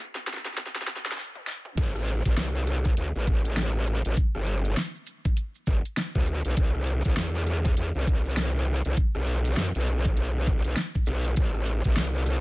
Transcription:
0.15 snare medium
0.27 snare medium
0.33 snare medium
0.37 snare medium
0.45 snare medium
0.45 closed hi-hat medium
0.47 snare soft
0.53 snare soft
0.57 kick loud
0.57 snare loud
0.57 closed hi-hat medium
0.66 snare medium
0.75 snare loud
0.81 snare medium
0.87 snare loud
0.87 closed hi-hat soft
0.96 snare medium
1.05 snare loud
1.05 closed hi-hat medium
1.11 snare loud
1.17 snare medium
1.35 high tom medium
1.47 snare medium
1.65 mid tom medium
1.77 2.23 A1 medium
1.77 kick loud
1.77 closed hi-hat medium
1.77 crash loud
1.77 shaker soft
1.83 closed hi-hat soft
1.95 cross-stick medium
1.95 shaker soft
2.08 closed hi-hat soft
2.08 shaker medium
2.25 2.36 A1 loud
2.25 kick medium
2.25 closed hi-hat medium
2.31 shaker soft
2.37 2.95 C2 loud
2.37 snare loud
2.37 closed hi-hat medium
2.37 shaker soft
2.55 shaker soft
2.67 cross-stick soft
2.67 closed hi-hat soft
2.67 shaker medium
2.85 kick loud
2.85 closed hi-hat medium
2.85 shaker soft
2.97 3.12 D2 loud
2.97 closed hi-hat medium
2.97 shaker soft
3.16 4.03 A1 medium
3.16 shaker soft
3.27 kick loud
3.27 shaker medium
3.45 closed hi-hat medium
3.45 shaker soft
3.57 snare loud
3.57 closed hi-hat medium
3.57 shaker soft
3.75 shaker soft
3.87 shaker medium
4.05 4.15 A1 loud
4.05 closed hi-hat medium
4.05 shaker soft
4.17 kick loud
4.17 closed hi-hat medium
4.17 shaker soft
4.35 4.75 G1 loud
4.35 cross-stick medium
4.35 shaker soft
4.47 closed hi-hat soft
4.47 shaker medium
4.65 closed hi-hat medium
4.65 shaker soft
4.77 snare loud
4.77 closed hi-hat medium
4.77 shaker soft
4.95 shaker soft
5.07 closed hi-hat soft
5.07 shaker medium
5.25 kick loud
5.25 closed hi-hat medium
5.25 shaker soft
5.37 closed hi-hat medium
5.37 shaker soft
5.55 shaker soft
5.67 5.82 G1 loud
5.67 kick loud
5.67 shaker medium
5.85 closed hi-hat medium
5.85 shaker soft
5.97 snare loud
5.97 closed hi-hat medium
5.97 shaker soft
6.15 6.42 D2 loud
6.15 kick medium
6.15 shaker soft
6.27 shaker medium
6.45 6.55 B1 loud
6.45 closed hi-hat medium
6.45 shaker soft
6.57 7.02 C2 medium
6.57 kick loud
6.57 closed hi-hat medium
6.57 shaker soft
6.75 cross-stick medium
6.75 shaker soft
6.87 closed hi-hat soft
6.87 shaker medium
7.05 7.15 C2 loud
7.05 kick medium
7.05 closed hi-hat medium
7.05 shaker soft
7.17 7.75 E2 loud
7.17 snare loud
7.17 closed hi-hat medium
7.17 shaker soft
7.35 shaker soft
7.47 cross-stick soft
7.47 closed hi-hat soft
7.47 shaker medium
7.65 kick loud
7.65 closed hi-hat medium
7.65 shaker soft
7.77 7.92 E2 loud
7.77 closed hi-hat medium
7.77 shaker soft
7.95 8.82 C2 loud
7.95 shaker soft
8.07 kick loud
8.07 shaker medium
8.25 shaker soft
8.31 closed hi-hat medium
8.37 snare loud
8.37 closed hi-hat medium
8.37 shaker soft
8.55 shaker soft
8.76 shaker medium
8.85 8.95 C2 loud
8.85 closed hi-hat medium
8.85 shaker soft
8.97 kick loud
8.97 closed hi-hat medium
8.97 shaker soft
9.15 9.55 B1 loud
9.15 cross-stick medium
9.15 shaker soft
9.27 closed hi-hat soft
9.27 shaker soft
9.33 shaker soft
9.37 shaker soft
9.45 closed hi-hat medium
9.45 shaker medium
9.47 shaker medium
9.53 snare loud
9.53 closed hi-hat soft
9.53 shaker medium
9.57 9.72 F#2 loud
9.66 closed hi-hat soft
9.75 10.62 B1 loud
9.75 closed hi-hat soft
9.75 shaker soft
9.81 closed hi-hat medium
9.87 closed hi-hat soft
9.87 shaker medium
10.05 kick loud
10.05 closed hi-hat medium
10.05 shaker soft
10.17 closed hi-hat medium
10.17 shaker soft
10.41 shaker soft
10.46 kick loud
10.46 shaker medium
10.64 10.75 B1 loud
10.64 closed hi-hat medium
10.64 shaker soft
10.76 snare loud
10.76 closed hi-hat medium
10.76 shaker soft
10.94 kick medium
10.94 shaker soft
11.06 11.35 B1 loud
11.06 shaker medium
11.25 closed hi-hat medium
11.25 shaker soft
11.36 11.82 A1 medium
11.36 kick loud
11.36 closed hi-hat medium
11.36 shaker soft
11.54 cross-stick medium
11.54 shaker soft
11.66 closed hi-hat soft
11.66 shaker medium
11.84 11.95 A1 medium
11.84 kick medium
11.84 closed hi-hat medium
11.84 shaker soft
11.96 12.40 C2 medium
11.96 snare loud
11.96 closed hi-hat medium
11.96 shaker soft
12.14 shaker soft
12.26 cross-stick soft
12.26 closed hi-hat soft
12.26 shaker medium

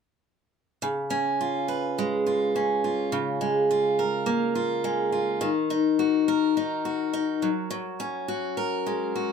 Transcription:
0.82 3.11 C#3 medium
1.10 2.55 C#4 soft
1.41 2.26 F4 soft
1.68 3.19 B4 soft
1.99 3.41 G#3 medium
2.26 2.84 F4 soft
2.56 3.41 C#4 soft
2.84 3.70 F4 soft
3.12 5.42 C#3 medium
3.41 4.83 G#3 soft
3.71 4.54 F4 medium
3.99 6.28 A#4 medium
4.26 5.40 A#3 soft
4.55 5.11 F4 medium
4.84 5.48 G#3 medium
5.12 5.48 F4 soft
5.41 7.49 D#3 medium
5.70 6.56 D#4 medium
5.99 6.85 F#4 medium
6.28 8.57 A#4 medium
6.57 7.12 D#4 medium
6.85 8.28 F#4 soft
7.14 7.49 D#4 medium
7.42 7.69 F#3 medium
7.71 9.32 F#3 medium
8.00 9.32 C#4 soft
8.28 9.14 F#4 medium
8.57 9.32 A#4 medium
8.86 9.32 G#3 soft
9.16 9.32 F#4 soft

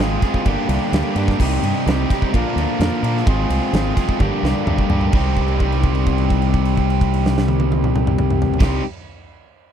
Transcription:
0.00 0.16 G#1 loud
0.00 0.21 G#3 loud
0.00 0.23 G#3 medium
0.00 0.22 C4 loud
0.00 0.22 C4 medium
0.00 0.22 F4 loud
0.00 0.21 F4 medium
0.00 0.22 G#4 loud
0.00 0.20 G#4 medium
0.00 snare loud
0.21 0.45 G#3 medium
0.21 0.45 C4 medium
0.21 0.44 F4 loud
0.21 0.44 G#4 loud
0.21 kick loud
0.21 snare soft
0.21 ride medium
0.34 kick medium
0.45 0.55 G1 medium
0.45 1.15 G2 loud
0.45 1.15 D3 loud
0.45 0.90 G3 loud
0.45 0.70 A#3 loud
0.45 0.68 D4 loud
0.45 0.67 G4 loud
0.45 kick loud
0.45 ride loud
0.68 0.78 C2 loud
0.68 0.92 A#3 medium
0.68 0.93 D4 medium
0.68 0.94 G4 medium
0.68 ride medium
0.91 1.01 D2 loud
0.91 1.17 G3 medium
0.91 1.16 A#3 medium
0.91 1.15 D4 medium
0.91 1.14 G4 medium
0.91 snare loud
0.91 ride loud
1.15 1.34 G2 medium
1.15 1.39 G3 medium
1.15 1.39 A#3 medium
1.15 1.38 D4 medium
1.15 1.38 G4 medium
1.15 ride medium
1.20 1.40 G2 medium
1.20 1.38 D3 medium
1.28 kick medium
1.28 snare soft
1.39 1.58 C2 loud
1.39 1.86 C3 loud
1.39 1.84 G3 loud
1.39 1.64 C4 medium
1.39 1.63 D#4 loud
1.39 1.61 G4 loud
1.39 kick loud
1.39 crash loud
1.62 1.72 G2 loud
1.62 1.86 C4 medium
1.62 1.87 D#4 medium
1.62 1.88 G4 medium
1.62 ride medium
1.86 2.04 C2 loud
1.86 2.10 G3 medium
1.86 2.10 C4 medium
1.86 2.09 D#4 medium
1.86 2.08 G4 medium
1.86 snare loud
1.86 ride loud
2.10 2.33 C3 medium
2.10 2.33 G3 medium
2.10 2.33 C4 medium
2.10 2.32 D#4 medium
2.10 2.32 G4 loud
2.10 kick medium
2.10 snare soft
2.10 ride medium
2.22 kick medium
2.33 2.43 A#1 loud
2.33 3.02 A#2 medium
2.33 3.03 D3 loud
2.33 3.03 F3 medium
2.33 2.78 A#3 medium
2.33 2.58 D4 loud
2.33 2.57 F4 loud
2.33 2.55 A#4 loud
2.33 kick loud
2.33 ride loud
2.56 2.65 D2 loud
2.56 2.79 D4 medium
2.56 2.80 F4 medium
2.56 2.81 A#4 medium
2.56 ride medium
2.79 2.89 F2 loud
2.79 3.05 A#3 medium
2.79 3.04 D4 medium
2.79 3.03 F4 medium
2.79 3.02 A#4 loud
2.79 snare loud
2.79 ride loud
3.03 3.21 A#2 medium
3.03 3.27 A#2 medium
3.03 3.27 D3 medium
3.03 3.26 F3 medium
3.03 3.25 A#3 medium
3.03 3.26 D4 medium
3.03 3.26 F4 medium
3.03 3.25 A#4 medium
3.03 ride medium
3.17 snare soft
3.26 3.45 G#1 loud
3.26 3.71 G#3 medium
3.26 3.51 C4 loud
3.26 3.50 F4 loud
3.26 3.48 C5 loud
3.26 kick loud
3.26 ride loud
3.30 3.94 G#4 loud
3.49 3.59 C2 medium
3.49 3.72 C4 medium
3.49 3.73 F4 medium
3.49 3.74 C5 medium
3.49 ride medium
3.72 3.91 G#1 loud
3.72 3.98 G#3 medium
3.72 3.97 C4 medium
3.72 3.96 F4 medium
3.72 3.95 C5 medium
3.72 snare loud
3.72 ride loud
3.95 4.19 G#3 medium
3.95 4.20 C4 medium
3.95 4.19 F4 medium
3.95 4.18 G#4 medium
3.95 4.18 C5 loud
3.95 kick loud
3.95 snare soft
3.95 ride medium
4.09 kick medium
4.19 4.29 G1 loud
4.19 4.89 G2 medium
4.19 4.89 D3 loud
4.19 4.64 G3 medium
4.19 4.90 A#3 loud
4.19 4.44 D4 loud
4.19 4.43 G4 loud
4.19 4.41 A#4 loud
4.19 kick loud
4.19 high tom medium
4.43 4.52 C2 loud
4.43 4.65 D4 medium
4.43 4.66 G4 medium
4.43 4.67 A#4 medium
4.43 snare medium
4.65 4.76 D2 loud
4.65 4.91 G3 medium
4.65 4.90 D4 medium
4.65 4.89 G4 medium
4.65 4.88 A#4 medium
4.65 mid tom medium
4.78 kick medium
4.89 5.08 G2 medium
4.89 5.12 D3 medium
4.89 5.11 G3 medium
4.89 5.13 A#3 medium
4.89 5.13 D4 medium
4.89 5.12 G4 medium
4.89 5.12 A#4 medium
4.89 floor tom loud
4.94 5.14 G2 medium
5.01 floor tom medium
5.12 8.50 C2 loud
5.12 8.58 C3 loud
5.12 8.60 D#3 loud
5.12 8.59 G3 loud
5.12 8.61 C4 loud
5.12 kick loud
5.12 crash medium
5.16 8.62 D#4 loud
5.16 8.63 G4 loud
5.36 kick medium
5.36 crash medium
5.48 crash soft
5.60 kick medium
5.60 crash soft
5.72 crash soft
5.83 kick medium
5.83 crash medium
5.95 crash soft
6.06 kick medium
6.06 crash medium
6.18 crash soft
6.30 kick medium
6.30 crash medium
6.42 crash medium
6.54 kick medium
6.54 crash soft
6.65 crash medium
6.77 kick medium
6.77 crash medium
6.90 crash medium
7.01 kick medium
7.01 crash medium
7.14 crash medium
7.26 snare medium
7.38 snare loud
7.48 high tom loud
7.60 high tom loud
7.72 high tom loud
7.84 mid tom medium
7.96 mid tom loud
8.07 mid tom loud
8.19 mid tom loud
8.30 mid tom loud
8.42 floor tom loud
8.54 floor tom loud
8.58 8.80 C2 loud
8.58 8.80 C3 loud
8.58 8.81 D#3 medium
8.58 8.81 G3 loud
8.58 8.81 C4 loud
8.58 8.82 D#4 loud
8.58 kick loud
8.58 snare loud
8.58 crash loud
8.64 8.83 G4 loud

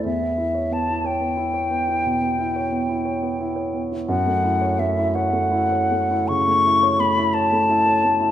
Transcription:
0.04 2.02 E2 soft
0.04 0.74 E5 medium
0.21 0.48 B3 soft
0.38 0.65 E4 soft
0.54 0.81 C#5 soft
0.71 0.98 B3 soft
0.71 1.08 A5 medium
0.89 1.15 E4 soft
1.04 1.31 C#5 soft
1.04 3.83 G5 medium
1.21 1.48 B3 soft
1.37 1.65 E4 soft
1.54 1.82 C#5 soft
1.70 1.98 B3 soft
1.88 2.16 E4 soft
2.06 2.33 B2 soft
2.21 2.49 B3 soft
2.39 2.66 E4 soft
2.56 2.83 C#5 soft
2.72 2.99 B3 soft
2.89 3.16 E4 soft
3.05 3.33 C#5 soft
3.22 3.50 B3 soft
3.40 3.67 E4 soft
3.56 3.84 C#5 soft
3.73 4.02 B3 soft
3.92 4.09 E4 soft
4.09 6.25 F#2 medium
4.09 4.81 F#5 medium
4.26 4.54 A3 soft
4.43 4.72 E4 soft
4.61 4.90 C#5 soft
4.79 5.08 A3 soft
4.79 5.16 E5 medium
4.97 5.26 E4 soft
5.15 5.45 C#5 soft
5.15 6.30 F#5 medium
5.32 5.63 A3 soft
5.51 5.83 E4 soft
5.72 6.03 C#5 soft
5.91 6.22 A3 soft
6.11 6.41 E4 soft
6.28 6.59 C#3 soft
6.28 7.02 C#6 medium
6.48 6.76 A3 soft
6.66 6.94 E4 soft
6.83 7.10 C#5 soft
6.99 7.27 A3 soft
6.99 7.35 B5 medium
7.17 7.45 E4 soft
7.34 7.62 C#5 soft
7.34 8.31 A5 medium
7.52 7.80 A3 soft
7.69 7.97 E4 soft
7.86 8.13 C#5 soft
8.04 8.31 A3 soft
8.20 8.31 E4 soft

